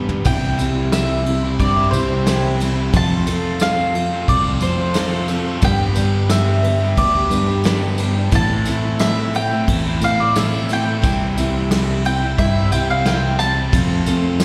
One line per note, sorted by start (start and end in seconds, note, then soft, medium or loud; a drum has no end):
0.00 0.23 G3 medium
0.00 0.24 G3 soft
0.00 0.24 B3 medium
0.00 0.24 B3 soft
0.00 0.23 D4 medium
0.00 0.25 D4 medium
0.00 0.24 G4 medium
0.00 0.25 B4 medium
0.09 floor tom medium
0.24 1.55 C2 loud
0.24 0.58 C3 medium
0.24 0.91 C3 medium
0.24 0.57 E3 loud
0.24 0.58 G3 medium
0.24 0.58 G3 loud
0.24 0.58 C4 medium
0.24 0.60 C4 loud
0.24 0.57 E4 medium
0.24 0.60 E4 loud
0.24 0.56 G4 medium
0.24 0.95 G5 loud
0.24 kick loud
0.24 crash loud
0.24 tambourine medium
0.57 1.26 C3 medium
0.57 0.92 E3 medium
0.57 1.26 G3 medium
0.57 0.93 G3 medium
0.57 1.27 C4 medium
0.57 0.94 C4 medium
0.57 1.25 E4 medium
0.57 1.24 G4 medium
0.57 ride medium
0.57 tambourine medium
0.62 0.94 E4 medium
0.92 1.42 C3 medium
0.92 1.24 E3 medium
0.92 1.11 G3 medium
0.92 1.10 C4 loud
0.92 1.07 E4 loud
0.92 1.60 E5 medium
0.92 snare loud
0.92 ride medium
0.92 tambourine loud
1.08 1.25 G3 medium
1.08 1.26 C4 medium
1.08 1.25 E4 medium
1.25 1.59 C4 soft
1.25 1.60 E4 medium
1.25 1.59 G4 medium
1.25 muted overdriven electric guitar stroke soft
1.25 ride medium
1.43 1.78 G3 medium
1.43 1.76 C4 medium
1.43 1.75 E4 medium
1.59 1.91 G2 medium
1.59 1.92 G3 medium
1.59 1.93 C4 medium
1.59 1.93 E4 medium
1.59 1.91 G4 medium
1.59 1.90 D5 medium
1.59 kick medium
1.59 ride medium
1.76 2.11 G3 medium
1.76 2.09 C4 medium
1.76 2.07 E4 medium
1.91 2.89 C2 medium
1.91 2.26 E4 soft
1.91 2.26 G4 medium
1.91 2.55 C5 medium
1.91 ride medium
1.91 tambourine medium
1.96 2.26 C4 soft
2.08 2.27 G3 medium
2.08 2.27 C4 medium
2.08 2.28 E4 medium
2.26 2.76 C3 medium
2.26 2.60 C3 medium
2.26 2.59 E3 medium
2.26 2.60 G3 medium
2.26 2.45 G3 medium
2.26 2.60 C4 medium
2.26 2.43 C4 medium
2.26 2.60 E4 medium
2.26 2.41 E4 medium
2.26 2.59 G4 medium
2.26 snare loud
2.26 ride loud
2.26 tambourine medium
2.43 2.60 G3 medium
2.43 2.61 C4 medium
2.43 2.62 E4 medium
2.60 2.91 E3 medium
2.60 2.78 G3 medium
2.60 2.77 C4 medium
2.60 2.93 C4 soft
2.60 2.94 E4 medium
2.60 2.75 E4 medium
2.60 2.94 G4 medium
2.60 ride medium
2.60 tambourine medium
2.77 2.93 G3 medium
2.77 2.92 C4 medium
2.77 2.91 E4 medium
2.92 3.59 F2 loud
2.92 4.24 F2 loud
2.92 3.61 C3 medium
2.92 3.27 F3 medium
2.92 3.25 F3 medium
2.92 3.27 A3 loud
2.92 3.27 C4 medium
2.92 3.28 C4 loud
2.92 3.27 F4 medium
2.92 3.29 F4 loud
2.92 3.26 A4 medium
2.92 kick loud
2.92 ride loud
2.92 tambourine medium
2.97 3.61 A5 loud
3.27 3.61 F3 medium
3.27 3.95 F3 medium
3.27 3.62 A3 medium
3.27 3.95 C4 medium
3.27 3.62 C4 medium
3.27 3.95 F4 medium
3.27 3.63 F4 medium
3.27 3.93 A4 medium
3.27 ride medium
3.27 tambourine medium
3.60 4.11 F2 medium
3.60 4.12 C3 loud
3.60 3.79 F3 medium
3.60 3.78 A3 loud
3.60 3.77 C4 loud
3.60 4.31 F5 medium
3.60 snare loud
3.60 ride loud
3.60 tambourine loud
3.64 3.75 F4 loud
3.77 3.94 F3 medium
3.77 3.94 A3 medium
3.77 3.94 C4 medium
3.77 3.95 F4 medium
3.94 4.27 C4 soft
3.94 4.28 F4 medium
3.94 4.28 A4 medium
3.94 muted overdriven electric guitar stroke soft
3.94 ride medium
4.11 4.48 F3 medium
4.11 4.46 A3 medium
4.11 4.45 C4 medium
4.11 4.44 F4 medium
4.28 4.59 C2 medium
4.28 4.61 F3 medium
4.28 4.62 C4 medium
4.28 4.61 F4 medium
4.28 4.59 A4 medium
4.28 4.60 D5 medium
4.28 kick medium
4.28 ride loud
4.45 4.80 F3 medium
4.45 4.79 A3 medium
4.45 4.78 C4 medium
4.45 4.76 F4 medium
4.60 5.58 F2 medium
4.60 4.94 C4 soft
4.60 4.95 F4 medium
4.60 4.95 A4 medium
4.60 5.25 C5 medium
4.60 ride medium
4.60 tambourine medium
4.78 4.95 F3 medium
4.78 4.96 A3 medium
4.78 4.96 C4 medium
4.78 4.97 F4 medium
4.94 5.46 F2 medium
4.94 5.46 C3 loud
4.94 5.29 F3 medium
4.94 5.14 F3 medium
4.94 5.13 A3 medium
4.94 5.29 C4 medium
4.94 5.12 C4 medium
4.94 5.28 F4 medium
4.94 5.27 A4 medium
4.94 snare loud
4.94 ride loud
4.94 tambourine medium
4.98 5.10 F4 loud
5.11 5.27 F3 medium
5.11 5.29 A3 medium
5.11 5.30 C4 medium
5.11 5.31 F4 medium
5.28 5.47 F3 medium
5.28 5.46 A3 medium
5.28 5.45 C4 medium
5.28 5.62 C4 soft
5.28 5.62 F4 soft
5.28 5.43 F4 medium
5.28 5.62 A4 medium
5.28 ride medium
5.28 tambourine medium
5.45 5.62 F3 medium
5.45 5.61 A3 medium
5.45 5.61 C4 medium
5.45 5.60 F4 medium
5.61 5.95 G2 medium
5.61 6.28 G2 medium
5.61 6.93 G2 loud
5.61 5.95 D3 medium
5.61 6.29 D3 medium
5.61 5.95 G3 medium
5.61 5.94 G3 loud
5.61 5.94 B3 medium
5.61 5.96 B3 loud
5.61 5.94 D4 medium
5.61 5.97 D4 loud
5.61 5.93 B4 medium
5.61 6.33 G5 loud
5.61 kick loud
5.61 ride loud
5.61 tambourine medium
5.66 5.98 G4 medium
5.94 6.64 G2 medium
5.94 6.64 D3 medium
5.94 6.30 G3 medium
5.94 6.64 G3 medium
5.94 6.63 B3 medium
5.94 6.31 B3 medium
5.94 6.62 D4 medium
5.94 6.31 D4 medium
5.94 6.61 B4 medium
5.94 ride medium
5.94 tambourine medium
5.99 6.32 G4 medium
6.29 6.80 G2 medium
6.29 6.81 D3 medium
6.29 6.48 G3 loud
6.29 6.47 B3 loud
6.29 6.45 D4 loud
6.29 6.44 G4 loud
6.29 6.97 E5 medium
6.29 snare loud
6.29 ride medium
6.29 tambourine loud
6.45 6.63 G3 medium
6.45 6.63 B3 medium
6.45 6.64 D4 medium
6.45 6.64 G4 medium
6.62 6.95 G3 soft
6.62 6.96 B3 soft
6.62 6.97 D4 medium
6.62 6.97 B4 medium
6.62 muted overdriven electric guitar stroke soft
6.62 ride medium
6.80 7.16 G3 medium
6.80 7.14 B3 medium
6.80 7.13 D4 medium
6.80 7.12 G4 medium
6.96 7.29 D2 medium
6.96 7.30 G3 medium
6.96 7.30 B3 medium
6.96 7.29 D4 medium
6.96 7.28 B4 medium
6.96 7.95 D5 medium
6.96 kick medium
6.96 ride loud
7.14 7.50 G3 medium
7.14 7.48 B3 medium
7.14 7.47 D4 medium
7.14 7.46 G4 medium
7.29 8.28 G2 medium
7.29 7.64 G3 soft
7.29 7.64 B3 soft
7.29 7.64 D4 medium
7.29 7.64 B4 medium
7.29 ride medium
7.29 tambourine medium
7.47 7.64 G3 medium
7.47 7.65 B3 medium
7.47 7.66 D4 medium
7.47 7.66 G4 medium
7.64 8.15 G2 medium
7.64 7.98 G2 medium
7.64 7.99 D3 medium
7.64 8.16 D3 medium
7.64 7.99 G3 medium
7.64 7.83 G3 medium
7.64 7.98 B3 medium
7.64 7.82 B3 loud
7.64 7.97 D4 medium
7.64 7.81 D4 loud
7.64 7.79 G4 loud
7.64 7.96 B4 medium
7.64 snare loud
7.64 ride loud
7.64 tambourine medium
7.80 7.98 G3 medium
7.80 7.98 B3 medium
7.80 8.00 D4 medium
7.80 8.01 G4 medium
7.97 8.17 G3 medium
7.97 8.32 G3 soft
7.97 8.16 B3 medium
7.97 8.32 B3 medium
7.97 8.32 D4 medium
7.97 8.15 D4 medium
7.97 8.32 B4 medium
7.97 ride medium
7.97 tambourine medium
8.02 8.13 G4 medium
8.15 8.32 G3 medium
8.15 8.31 B3 medium
8.15 8.31 D4 medium
8.15 8.30 G4 medium
8.31 8.66 A2 medium
8.31 8.98 A2 loud
8.31 9.63 A2 loud
8.31 8.66 E3 medium
8.31 8.65 E3 loud
8.31 8.66 A3 medium
8.31 8.66 A3 loud
8.31 8.66 C4 medium
8.31 8.68 C4 loud
8.31 8.65 E4 medium
8.31 8.65 A4 medium
8.31 9.00 A5 loud
8.31 kick loud
8.31 ride loud
8.31 tambourine medium
8.36 8.69 E4 loud
8.65 9.35 A2 medium
8.65 9.00 E3 medium
8.65 10.36 E3 medium
8.65 9.00 A3 medium
8.65 9.34 A3 medium
8.65 9.35 C4 medium
8.65 9.02 C4 medium
8.65 9.34 E4 medium
8.65 9.02 E4 medium
8.65 9.32 A4 medium
8.65 ride medium
8.65 tambourine medium
8.99 9.50 A2 medium
8.99 9.33 E3 loud
8.99 9.19 A3 medium
8.99 9.19 C4 loud
8.99 9.17 E4 loud
8.99 9.35 E5 medium
8.99 snare loud
8.99 ride loud
8.99 tambourine loud
9.17 9.33 A3 medium
9.17 9.34 C4 medium
9.17 9.34 E4 medium
9.33 9.66 A3 soft
9.33 9.68 C4 medium
9.33 9.68 E4 medium
9.33 9.67 A4 medium
9.33 9.98 G5 loud
9.33 muted overdriven electric guitar stroke soft
9.33 ride medium
9.33 tambourine soft
9.51 9.87 A3 medium
9.51 9.86 C4 medium
9.51 9.83 E4 medium
9.67 9.99 E2 medium
9.67 10.01 A3 medium
9.67 10.02 C4 medium
9.67 10.02 E4 medium
9.67 10.01 A4 medium
9.67 kick medium
9.67 ride loud
9.67 tambourine soft
9.84 10.20 A3 medium
9.84 10.19 C4 medium
9.84 10.16 E4 medium
10.01 10.98 A2 medium
10.01 10.35 A3 soft
10.01 10.35 C4 soft
10.01 10.36 E4 medium
10.01 10.35 A4 medium
10.01 10.20 F5 medium
10.01 ride medium
10.01 tambourine medium
10.18 10.36 A3 medium
10.18 10.37 C4 medium
10.18 10.37 E4 medium
10.18 10.35 D5 medium
10.35 10.85 A2 medium
10.35 10.69 A2 medium
10.35 10.68 E3 medium
10.35 10.69 E3 medium
10.35 10.69 A3 medium
10.35 10.55 A3 medium
10.35 10.69 C4 medium
10.35 10.54 C4 medium
10.35 10.68 E4 medium
10.35 10.51 E4 loud
10.35 10.67 A4 medium
10.35 10.71 E5 medium
10.35 snare loud
10.35 ride loud
10.35 tambourine medium
10.53 10.69 A3 medium
10.53 10.71 C4 medium
10.53 10.71 E4 medium
10.68 11.01 E3 medium
10.68 10.88 A3 medium
10.68 11.02 A3 soft
10.68 11.01 C4 soft
10.68 10.87 C4 medium
10.68 11.02 E4 medium
10.68 11.02 A4 medium
10.68 ride medium
10.68 tambourine medium
10.73 10.85 E4 medium
10.73 12.05 G5 loud
10.86 11.02 A3 medium
10.86 11.06 C4 medium
10.86 11.01 E4 medium
11.02 12.34 C2 loud
11.02 11.36 C3 medium
11.02 11.69 C3 medium
11.02 11.35 E3 loud
11.02 11.36 G3 medium
11.02 11.36 G3 loud
11.02 11.36 C4 medium
11.02 11.36 E4 medium
11.02 11.35 G4 medium
11.02 kick loud
11.02 crash medium
11.02 tambourine medium
11.06 11.38 C4 loud
11.06 11.39 E4 loud
11.36 12.05 C3 medium
11.36 11.71 E3 medium
11.36 11.71 G3 medium
11.36 12.05 G3 medium
11.36 12.06 C4 medium
11.36 11.73 C4 medium
11.36 12.04 E4 medium
11.36 11.73 E4 medium
11.36 12.02 G4 medium
11.36 ride medium
11.36 tambourine medium
11.71 12.21 C3 medium
11.71 12.03 E3 medium
11.71 11.90 G3 loud
11.71 11.89 C4 loud
11.71 11.86 E4 loud
11.71 snare loud
11.71 ride loud
11.71 tambourine medium
11.87 12.04 G3 medium
11.87 12.05 C4 medium
11.87 12.04 E4 medium
12.04 12.37 C4 soft
12.04 12.38 E4 medium
12.04 12.37 G4 medium
12.04 12.38 G5 loud
12.04 muted overdriven electric guitar stroke soft
12.04 ride medium
12.21 12.57 G3 medium
12.21 12.55 C4 medium
12.21 12.53 E4 medium
12.38 12.69 G2 medium
12.38 12.71 G3 medium
12.38 12.72 C4 medium
12.38 12.72 E4 medium
12.38 12.70 G4 medium
12.38 12.69 E5 medium
12.38 kick medium
12.38 ride loud
12.54 12.90 G3 medium
12.54 12.89 C4 medium
12.54 12.87 E4 medium
12.72 13.68 C2 medium
12.72 13.05 C4 soft
12.72 13.05 E4 soft
12.72 13.05 G4 soft
12.72 12.89 G5 medium
12.72 ride medium
12.72 tambourine medium
12.88 13.06 G3 medium
12.88 13.07 C4 medium
12.88 13.07 E4 medium
12.88 13.05 F5 medium
13.04 13.38 C3 medium
13.04 13.55 C3 loud
13.04 13.37 E3 medium
13.04 13.39 G3 medium
13.04 13.23 G3 loud
13.04 13.39 C4 medium
13.04 13.22 C4 loud
13.04 13.39 E4 medium
13.04 13.20 E4 loud
13.04 13.38 G4 medium
13.04 13.38 G5 medium
13.04 snare loud
13.04 ride loud
13.04 tambourine medium
13.21 13.39 G3 medium
13.21 13.40 C4 medium
13.21 13.41 E4 medium
13.39 13.70 E3 medium
13.39 13.58 G3 medium
13.39 13.57 C4 medium
13.39 13.72 C4 soft
13.39 13.73 E4 soft
13.39 13.54 E4 medium
13.39 13.72 G4 medium
13.39 14.45 A5 loud
13.39 ride medium
13.39 tambourine medium
13.56 13.72 G3 medium
13.56 13.71 C4 medium
13.56 13.70 E4 medium
13.72 14.39 F2 medium
13.72 14.45 F2 loud
13.72 14.40 C3 medium
13.72 14.06 F3 medium
13.72 14.05 F3 medium
13.72 14.07 A3 loud
13.72 14.06 C4 medium
13.72 14.08 C4 loud
13.72 14.06 F4 medium
13.72 14.09 F4 loud
13.72 14.06 A4 loud
13.72 kick loud
13.72 ride loud
13.72 tambourine medium
14.06 14.40 F3 medium
14.06 14.45 F3 medium
14.06 14.41 A3 medium
14.06 14.45 C4 medium
14.06 14.42 C4 medium
14.06 14.45 F4 medium
14.06 14.42 F4 medium
14.06 14.45 A4 medium
14.06 ride medium
14.06 tambourine medium
14.40 14.45 F2 medium
14.40 14.45 C3 medium
14.40 14.45 F3 medium
14.40 snare loud
14.40 ride loud
14.40 tambourine loud